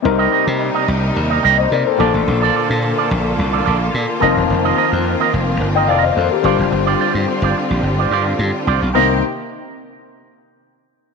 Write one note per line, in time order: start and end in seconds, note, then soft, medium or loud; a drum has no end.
0.02 0.26 C2 loud
0.02 1.94 C3 medium
0.02 1.97 C3 medium
0.02 1.97 G3 medium
0.02 6.40 A#3 medium
0.02 1.95 C4 medium
0.02 1.97 D#4 medium
0.02 1.95 D#4 medium
0.02 1.41 A#4 medium
0.02 muted clean electric guitar stroke soft
0.18 0.31 G4 medium
0.18 0.32 A#4 medium
0.18 0.33 D#5 medium
0.32 0.49 G4 medium
0.32 0.47 A#4 medium
0.32 0.46 D#5 medium
0.47 0.69 C3 loud
0.47 muted clean electric guitar stroke soft
0.60 muted clean electric guitar stroke soft
0.74 0.87 G4 medium
0.74 0.87 A#4 medium
0.74 0.88 D#5 medium
0.88 1.10 C2 medium
0.88 muted clean electric guitar stroke soft
1.03 muted clean electric guitar stroke soft
1.15 1.38 D#2 medium
1.15 muted clean electric guitar stroke soft
1.30 1.42 G4 soft
1.30 1.43 A#4 medium
1.30 1.44 D#5 medium
1.43 1.66 C2 medium
1.43 1.65 G4 medium
1.43 1.58 A#4 medium
1.43 1.57 D#5 medium
1.58 1.71 C5 medium
1.58 1.71 D#5 medium
1.58 muted clean electric guitar stroke soft
1.72 1.83 C3 medium
1.72 1.86 A#4 medium
1.72 1.86 D5 medium
1.85 1.99 A4 medium
1.85 2.13 C5 medium
1.85 muted clean electric guitar stroke soft
1.98 2.11 A#1 medium
1.98 4.17 A#2 medium
1.98 4.19 D3 medium
1.98 4.17 A#3 medium
1.98 4.18 D4 medium
1.98 2.20 F4 medium
1.98 8.91 F4 medium
1.98 4.19 A4 medium
1.98 2.14 A4 medium
1.98 4.18 A4 medium
1.98 2.13 D5 loud
2.14 2.24 A1 loud
2.14 muted clean electric guitar stroke soft
2.27 2.49 A#1 loud
2.27 muted clean electric guitar stroke soft
2.42 2.54 F4 medium
2.42 2.55 A4 medium
2.42 2.55 D5 medium
2.55 2.72 F4 medium
2.55 2.70 A4 medium
2.55 2.69 D5 medium
2.70 2.92 A#2 medium
2.70 muted clean electric guitar stroke soft
2.83 muted clean electric guitar stroke medium
2.98 3.09 F4 medium
2.98 3.10 A4 medium
2.98 3.10 D5 medium
3.10 3.33 A#1 loud
3.10 muted clean electric guitar stroke soft
3.25 muted clean electric guitar stroke medium
3.38 3.60 C2 medium
3.38 muted clean electric guitar stroke soft
3.52 3.63 F4 soft
3.52 3.64 A4 medium
3.52 3.65 D5 medium
3.64 3.88 A#1 medium
3.64 3.86 F4 medium
3.64 3.79 A4 medium
3.64 3.78 D5 medium
3.79 muted clean electric guitar stroke soft
3.94 4.06 A#2 loud
4.08 muted clean electric guitar stroke soft
4.20 4.34 F1 medium
4.20 6.42 D#3 medium
4.20 5.85 F3 medium
4.20 5.85 C4 medium
4.20 8.91 C4 medium
4.20 5.86 D#4 medium
4.20 4.42 F4 medium
4.20 4.36 A#4 medium
4.20 5.59 A#4 medium
4.20 4.34 D#5 medium
4.36 4.47 E1 medium
4.36 muted clean electric guitar stroke medium
4.50 4.71 F1 loud
4.50 muted clean electric guitar stroke medium
4.64 4.76 F4 medium
4.64 4.77 A#4 medium
4.64 4.77 D#5 medium
4.77 4.94 F4 medium
4.77 4.92 A#4 medium
4.77 4.91 D#5 medium
4.92 5.14 F2 medium
4.92 muted clean electric guitar stroke soft
5.05 muted clean electric guitar stroke soft
5.20 5.32 F4 medium
5.20 5.33 A#4 medium
5.20 5.33 D#5 medium
5.33 5.55 F1 medium
5.33 muted clean electric guitar stroke soft
5.48 muted clean electric guitar stroke medium
5.61 5.89 G1 medium
5.61 muted clean electric guitar stroke soft
5.75 5.88 F4 medium
5.75 5.89 A#4 medium
5.75 5.88 D#5 soft
5.75 5.90 D#5 medium
5.75 5.88 G5 medium
5.88 6.11 F1 medium
5.88 6.10 F4 medium
5.88 6.04 A#4 medium
5.88 6.03 D5 medium
5.88 6.03 D#5 medium
5.88 6.02 F5 medium
6.03 6.15 C5 medium
6.03 6.16 D#5 medium
6.03 muted clean electric guitar stroke soft
6.16 6.28 F2 medium
6.16 6.31 A4 soft
6.16 6.30 C5 medium
6.31 6.58 G4 soft
6.31 6.58 A#4 soft
6.31 muted clean electric guitar stroke soft
6.43 6.56 G1 loud
6.43 8.92 D3 medium
6.43 8.62 G3 medium
6.43 8.93 G3 medium
6.43 8.63 D4 medium
6.43 6.65 F4 medium
6.43 8.63 F4 medium
6.43 6.59 C5 medium
6.43 8.64 C5 medium
6.43 6.58 D5 loud
6.59 6.69 F#1 medium
6.59 muted clean electric guitar stroke medium
6.71 6.94 G1 loud
6.71 muted clean electric guitar stroke soft
6.86 6.98 F4 medium
6.86 6.99 C5 medium
6.86 7.00 D5 medium
6.99 7.17 F4 medium
6.99 7.14 C5 medium
6.99 7.13 D5 medium
7.14 7.25 G2 medium
7.14 muted clean electric guitar stroke soft
7.27 muted clean electric guitar stroke medium
7.42 7.52 G1 medium
7.42 7.55 F4 medium
7.42 7.56 C5 medium
7.42 7.57 D5 medium
7.57 muted clean electric guitar stroke soft
7.70 7.81 A#1 medium
7.70 muted clean electric guitar stroke soft
7.83 8.05 G1 medium
7.83 muted clean electric guitar stroke soft
7.99 8.10 F4 soft
7.99 8.11 C5 soft
7.99 8.12 D5 medium
8.11 8.33 G2 medium
8.11 8.33 F4 medium
8.11 8.26 C5 medium
8.11 8.25 D5 medium
8.26 muted clean electric guitar stroke soft
8.39 8.51 G2 loud
8.55 muted clean electric guitar stroke soft
8.67 8.79 C2 medium
8.67 8.88 F4 medium
8.67 8.81 C5 medium
8.67 8.81 D5 medium
8.82 8.92 B1 medium
8.82 muted clean electric guitar stroke soft
8.94 9.21 C2 loud
8.94 9.21 C3 medium
8.94 9.21 D#3 medium
8.94 9.21 A#3 medium
8.94 9.21 C4 medium
8.94 9.21 D#4 medium
8.94 9.12 G4 medium
8.94 9.21 G4 medium
8.94 9.12 A#4 medium
8.94 9.21 C5 medium
8.94 9.13 D#5 medium